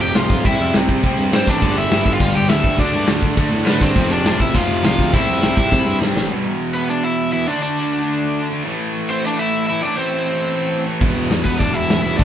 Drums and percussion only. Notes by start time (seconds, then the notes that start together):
0.15 snare, crash
0.29 kick, crash
0.45 kick, crash
0.59 crash
0.74 snare, crash
0.89 kick, crash
1.04 kick, crash
1.18 crash
1.33 snare, crash
1.47 kick, crash
1.62 kick, crash
1.77 crash
1.91 snare, crash
2.06 kick, crash
2.20 kick, crash
2.35 crash
2.49 snare, crash
2.64 kick, crash
2.79 kick, crash
2.93 crash
3.07 snare, crash
3.22 kick, crash
3.37 kick, crash
3.52 crash
3.67 snare, crash
3.81 kick, crash
3.96 kick, crash
4.11 crash
4.26 snare, crash
4.40 kick, crash
4.55 kick, crash
4.70 crash
4.84 snare, crash
4.99 kick, crash
5.14 kick, crash
5.28 crash
5.43 snare, crash
5.57 kick, crash
5.72 kick, snare
6.02 snare
6.17 snare
11.01 kick, crash
11.31 snare, open hi-hat
11.45 kick
11.60 kick, open hi-hat
11.90 snare, open hi-hat
12.19 kick, open hi-hat